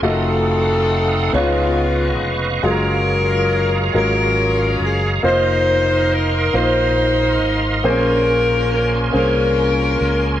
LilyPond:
<<
  \new Staff \with { instrumentName = "Tonewheel organ" } { \time 6/8 \key bes \minor \tempo 4. = 46 << { <a' ees'''>4. <ces'' des'''>4. | <aes' bes''>2. | <bes' c'''>2.~ | <bes' c'''>2. | } \\ { <f'' ges''>4. ees''4. | <des'' f''>2. | ees''2. | <des' aes''>2. | } >> }
  \new Staff \with { instrumentName = "Saxophone section" } { \time 6/8 \key bes \minor << { a'4. f'4 r8 | bes'4. bes'4 aes'8 | c''4 bes'8 c''4 r8 | bes'4. bes'4. | } \\ { <c' ees'>4. <aes ces'>4. | <des' f'>4. <des' f'>4. | ees'4. ees'4. | <des' f'>4. <des' f'>4. | } >> }
  \new Staff \with { instrumentName = "Grand piano" } { \time 6/8 \key bes \minor <a f' ges' ees''>4. <des ces' ees' f' des''>4. | <ges aes f' aes' bes'>4. <ges aes f' bes'>4. | <bes ees' f' c''>4. <bes ees' f' c''>4. | <bes, bes c' des' aes' c''>4. <bes des' aes' c''>4. | }
  \new Staff \with { instrumentName = "Fingered electric bass" } { \clef bass \time 6/8 \key bes \minor f,,4. des,4 f,,8 | ges,,4. aes,,4 ges,,8 | f,,4. bes,,4 aes,,8 | bes,,4. c,4 des,8 | }
>>